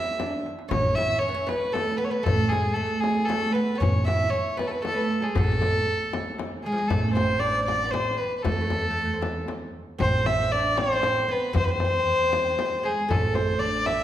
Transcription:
Already playing: oud E4, violin E5
0.19 oud D4, darbuka tek, frame drum
0.33 darbuka ka
0.46 darbuka tek
0.59 darbuka ka
0.69 upright bass A1, oud C#4, violin C#5, frame drum, darbuka dum
0.95 oud E4, violin E5, darbuka tek, frame drum
1.19 oud C#4, violin C#5
1.29 oud B3
1.34 oud C#4
1.47 oud B3, violin B4, darbuka tek, frame drum
1.72 oud A3, violin A4, darbuka tek, frame drum
1.97 oud B3, violin B4, darbuka ka
2.04 violin C#5
2.10 oud B3, violin B4
2.23 upright bass A1, oud A3, violin A4, darbuka dum, frame drum
2.48 oud G#3, violin G#4, darbuka tek
2.52 frame drum
2.74 oud A3, violin A4
3.00 violin G#4, darbuka tek, frame drum
3.25 oud A3, violin A4
3.30 darbuka tek, frame drum
3.52 oud B3, violin B4, darbuka ka
3.75 oud B3, violin C#5
3.80 upright bass A1, oud C#4, darbuka dum, frame drum
4.05 oud E4, violin E5, darbuka tek, frame drum
4.30 oud C#4, violin C#5
4.57 oud B3, violin B4, darbuka tek, frame drum
4.68 violin A4 B4
4.82 oud A3, violin A4, darbuka tek, frame drum
4.94 violin A4 B4
5.10 darbuka ka
5.20 oud F#3 G#3, violin G#4 A4
5.35 upright bass A1, oud A3, violin A4, darbuka dum, frame drum
5.44 oud B3
5.52 oud A3
5.61 darbuka tek, frame drum
6.13 darbuka tek, frame drum
6.38 darbuka tek, frame drum
6.64 oud G#3, violin G#4, darbuka ka
6.72 oud F3
6.78 oud G#3
6.88 upright bass A1, oud A3, violin A4, darbuka dum, frame drum
7.13 oud C4, violin C5, darbuka tek, frame drum
7.40 oud D4, violin D5
7.65 violin D5, darbuka tek, frame drum
7.85 oud B3
7.91 oud C4, violin C5, darbuka tek, frame drum
8.18 violin B4
8.38 violin B4
8.43 upright bass E2, oud A3, violin A4, frame drum, darbuka dum
8.52 oud A3
8.61 oud A3
8.67 oud A3, darbuka tek, frame drum
8.73 oud A3
8.81 oud A3
8.91 oud A3
8.98 oud A3
9.05 oud A3
9.13 oud C4
9.21 oud B3, darbuka tek, frame drum
9.48 darbuka tek, frame drum
9.99 upright bass A1, oud C4, violin C5, darbuka dum, frame drum
10.25 violin E5, darbuka tek, frame drum
10.52 oud D4, violin D5
10.76 oud C4, violin C5, darbuka tek, frame drum
11.02 oud C4, darbuka tek, frame drum
11.28 oud B3, violin B4
11.53 upright bass E2, oud C4, violin C5, darbuka dum, frame drum
11.64 violin B4
11.69 oud C4, violin C5
11.76 oud C4
11.80 darbuka tek, frame drum
11.85 oud C4
11.91 oud C4
11.99 oud C4
12.07 oud C4, darbuka ka
12.16 oud C4
12.22 oud C4
12.30 oud C4, darbuka tek, frame drum
12.36 oud C4
12.44 oud C4
12.50 oud C4
12.58 oud C4, darbuka tek, frame drum
12.65 oud C4
12.83 oud G#3, violin G#4, darbuka ka
13.09 upright bass A1, oud A3, violin A4, darbuka dum, frame drum
13.35 violin C5, darbuka tek, frame drum
13.59 oud D4, violin D5
13.86 violin E5, darbuka tek, frame drum

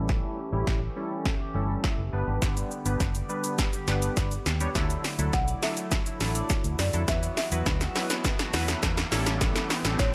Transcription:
Already playing: fingered electric bass A1, analog synth pad E3 A3 C#4 G4, analog polysynth G3 C#4 E4 A4, qanun B3 G4 E5
0.09 qanun E3, kick, snare
0.24 qanun C#4
0.52 fingered electric bass A1, analog polysynth G3 C#4 E4 G4, qanun G4
0.67 fingered electric bass A1, kick, snare
0.82 qanun E5
0.96 analog polysynth G3 C#4 E4 A4
1.11 qanun C#4
1.25 kick, snare
1.40 qanun G4
1.54 fingered electric bass G1, analog polysynth G3 C#4 E4 A4, qanun C#4
1.69 qanun E5
1.84 kick, snare
1.98 fingered electric bass F#1
2.13 fingered electric bass G1, analog synth pad D3 G3 B3 G4, analog polysynth G3 B3 D4 B4
2.28 fingered electric bass G#1, qanun G4
2.42 fingered electric bass G1, qanun D3, kick, snare, shaker
2.57 qanun B3, closed hi-hat, shaker
2.71 shaker
2.85 fingered electric bass G1, analog polysynth G3 B3 D4 B4, qanun G4, closed hi-hat, shaker
3.00 fingered electric bass F#1, kick, snare, shaker
3.15 qanun D5, closed hi-hat, shaker
3.29 analog polysynth G3 B3 D4 B4, shaker
3.44 qanun B3, closed hi-hat, shaker
3.58 qanun G3, kick, snare, shaker
3.73 qanun G4, closed hi-hat, shaker
3.87 fingered electric bass G1, analog polysynth G3 B3 D4 B4, qanun B3, snare, shaker
4.02 qanun D5, closed hi-hat, shaker
4.17 fingered electric bass G1, kick, snare, shaker
4.31 closed hi-hat, shaker
4.46 fingered electric bass D#2, snare, shaker
4.60 analog polysynth G3 B3 D4 C#5, qanun G4, closed hi-hat, shaker
4.75 fingered electric bass D2, qanun D3, analog synth pad D3 F#3 A3 E4, analog polysynth F#3 D4 E4 A4, kick, snare, riser, shaker
4.90 qanun A3, closed hi-hat, shaker
5.04 snare, open hi-hat, shaker
5.19 fingered electric bass D2, analog polysynth F#3 D4 E4 A4, qanun E4, closed hi-hat, shaker
5.33 fingered electric bass B1, marimba F#5, kick, snare, shaker
5.48 qanun D5, closed hi-hat, shaker
5.62 analog polysynth F#3 D4 E4 A4, marimba E5, snare, open hi-hat, shaker
5.77 qanun A3, closed hi-hat, shaker
5.91 qanun F#3, kick, snare, shaker
6.06 qanun E4, closed hi-hat, shaker
6.20 fingered electric bass A1, analog polysynth F#3 D4 E4 A4, qanun A3, snare, open hi-hat, shaker
6.35 qanun D5, closed hi-hat, shaker
6.49 kick, snare, shaker
6.64 fingered electric bass D2, closed hi-hat, shaker
6.79 fingered electric bass F#2, marimba D5, snare, open hi-hat, shaker
6.93 fingered electric bass F2, analog polysynth F#3 D4 E4 A4, qanun E4, closed hi-hat, shaker
7.08 fingered electric bass E2, analog synth pad E3 B3 F#4, qanun E3, analog polysynth F#3 B3 E4 B4, marimba E5, kick, snare, shaker
7.23 qanun B3, closed hi-hat, shaker
7.37 marimba E5, snare, open hi-hat, shaker
7.52 fingered electric bass E2, analog polysynth F#3 B3 E4 B4, qanun F#4, closed hi-hat, shaker
7.66 fingered electric bass D2, kick, snare, shaker
7.81 qanun E5, snare, closed hi-hat, shaker
7.95 analog polysynth F#3 B3 E4 B4, snare, open hi-hat, shaker
8.10 qanun B3, snare, closed hi-hat, shaker
8.24 qanun F#3, kick, snare, shaker
8.39 qanun F#4, snare, closed hi-hat, shaker
8.53 fingered electric bass E2, analog polysynth F#3 B3 E4 B4, qanun B3, snare, open hi-hat, shaker
8.68 qanun E5, snare, closed hi-hat, shaker
8.83 fingered electric bass E2, kick, snare, shaker
8.97 snare, closed hi-hat, shaker
9.12 fingered electric bass A1, analog polysynth G3 C#4 E4 A4, analog synth pad A3 C#4 G4, snare, open hi-hat, shaker
9.26 qanun G4, snare, closed hi-hat, shaker
9.41 qanun E3, kick, snare, shaker
9.56 qanun C#4, snare, closed hi-hat, shaker
9.70 snare, open hi-hat, shaker
9.85 fingered electric bass A1, analog polysynth G3 C#4 E4 A4, qanun G4, snare, closed hi-hat, shaker
9.99 fingered electric bass A1, marimba C#5, kick, snare, shaker

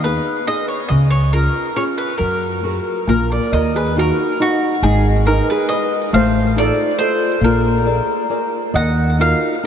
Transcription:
Already playing: upright bass D#2
0.04 nylon-string guitar B3 D#4 G#4, mandolin B4
0.47 nylon-string guitar B3 D#4 G#4, mandolin D#5
0.68 mandolin C#5
0.88 upright bass C#2, nylon-string guitar C#3, mandolin D#5
1.10 mandolin C#5
1.33 nylon-string guitar C#4 F4 G#4, mandolin A#4
1.76 nylon-string guitar C#4 F4 G#4, mandolin C#5
1.98 mandolin B4
2.18 upright bass F#2, nylon-string guitar F#3, mandolin A#4
2.63 nylon-string guitar F#4 G#4 A#4
3.07 upright bass A#1, nylon-string guitar A#3 G#5, steel pan F4, mandolin A#4
3.32 steel pan A#4, mandolin D5
3.52 upright bass D#2, nylon-string guitar D#3, steel pan A#4, mandolin D#5
3.76 steel pan G#4, mandolin B4
3.96 nylon-string guitar D#4 F#4 F5, steel pan F#4, mandolin A#4
4.40 steel pan D#4, nylon-string guitar D#4 F#4 F5, mandolin F#4
4.83 upright bass G#1, nylon-string guitar G#3, steel pan D#4, mandolin G#4
5.25 steel pan D#4, nylon-string guitar G#4 A#4 B4, mandolin A#4
5.50 steel pan G#4, mandolin B4
5.69 nylon-string guitar G#4 B4, steel pan B4, mandolin D#5
6.13 upright bass A1, nylon-string guitar A3, steel pan C5, mandolin F5
6.56 nylon-string guitar D#4 F4 A4, mandolin D5
6.60 steel pan A4
6.98 nylon-string guitar F4 A4 D#5, steel pan A4, mandolin C5
7.41 upright bass A#1, nylon-string guitar A#3, mandolin A#4
7.45 steel pan F4
7.85 nylon-string guitar G#4 A#4 D5
8.29 nylon-string guitar G#4 A#4 D5
8.74 upright bass D#2, nylon-string guitar D#3, steel pan D#5, mandolin F#5
9.19 nylon-string guitar D#4 F4 F#4, steel pan A#4, mandolin F5
9.63 nylon-string guitar D#4

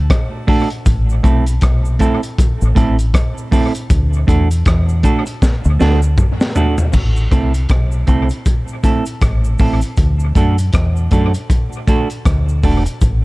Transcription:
0.10 kick, cross-stick, closed hi-hat
0.47 clean electric guitar A3 D4 F#4 A4, kick, open hi-hat
0.70 closed hi-hat
0.86 fingered electric bass A1, kick, closed hi-hat, cabasa
1.09 cabasa
1.23 fingered electric bass B1, clean electric guitar A3 C4 E4 A4, kick, closed hi-hat, cabasa
1.46 closed hi-hat, cabasa
1.61 fingered electric bass B1, kick, cross-stick, closed hi-hat, cabasa
1.85 cabasa
1.99 clean electric guitar A3 C4 E4 A4, kick, closed hi-hat, cabasa
2.23 closed hi-hat, cabasa
2.38 kick, closed hi-hat, cabasa
2.61 fingered electric bass A1, cabasa
2.75 fingered electric bass A1, clean electric guitar A3 C4 E4 A4, kick, closed hi-hat, cabasa
2.99 closed hi-hat, cabasa
3.14 kick, cross-stick, closed hi-hat, cabasa
3.38 cabasa
3.51 clean electric guitar A3 C4 E4 A4, kick, open hi-hat, cabasa
3.75 closed hi-hat, cabasa
3.90 fingered electric bass D2, kick, closed hi-hat, cabasa
4.13 cabasa
4.27 fingered electric bass E2, clean electric guitar A3 D4 F#4 A4, kick, closed hi-hat, cabasa
4.51 closed hi-hat, cabasa
4.66 fingered electric bass E2, kick, cross-stick, closed hi-hat, cabasa
4.89 cabasa
5.03 clean electric guitar A3 D4 F#4 A4, kick, closed hi-hat, cabasa
5.26 muted clean electric guitar stroke, closed hi-hat, cabasa
5.42 kick, snare, cabasa
5.64 fingered electric bass D2, cabasa
5.79 fingered electric bass D2, clean electric guitar A3 D4 F#4 A4, snare, cabasa
6.02 cabasa
6.18 kick, mid tom, cabasa
6.41 snare, cabasa
6.55 clean electric guitar A3 D4 F#4 A4, floor tom, cabasa
6.78 floor tom, cabasa
6.93 fingered electric bass A1, kick, crash, cabasa
7.16 cabasa
7.31 fingered electric bass C2, clean electric guitar A3 C4 E4 A4, kick, closed hi-hat, cabasa
7.54 closed hi-hat, cabasa
7.69 fingered electric bass B1, kick, cross-stick, closed hi-hat, cabasa
7.92 cabasa
8.07 fingered electric bass C2, clean electric guitar A3 C4 E4 A4, kick, closed hi-hat, cabasa
8.29 closed hi-hat, cabasa
8.46 kick, closed hi-hat, cabasa
8.68 cabasa
8.83 clean electric guitar A3 C4 E4 A4, kick, closed hi-hat, cabasa
9.06 closed hi-hat, cabasa
9.22 fingered electric bass A1, kick, cross-stick, closed hi-hat, cabasa
9.44 cabasa
9.59 fingered electric bass A1, clean electric guitar A3 C4 E4 A4, kick, open hi-hat, cabasa
9.81 closed hi-hat, cabasa
9.97 fingered electric bass D2, kick, closed hi-hat, cabasa
10.20 cabasa
10.35 fingered electric bass F#2, clean electric guitar A3 D4 F#4 A4, kick, closed hi-hat, cabasa
10.58 closed hi-hat, cabasa
10.73 fingered electric bass E2, kick, cross-stick, closed hi-hat, cabasa
10.96 cabasa
11.11 fingered electric bass F#2, clean electric guitar A3 D4 F#4 A4, kick, closed hi-hat, cabasa
11.34 closed hi-hat, cabasa
11.50 kick, closed hi-hat, cabasa
11.73 cabasa
11.87 clean electric guitar A3 D4 F#4 A4, kick, closed hi-hat, cabasa
12.10 closed hi-hat, cabasa
12.25 fingered electric bass D2, kick, cross-stick, closed hi-hat, cabasa
12.49 cabasa
12.63 fingered electric bass E1, clean electric guitar A3 D4 F#4 A4, kick, open hi-hat, cabasa
12.86 muted clean electric guitar stroke, closed hi-hat, cabasa
13.01 fingered electric bass A1, kick, closed hi-hat, cabasa

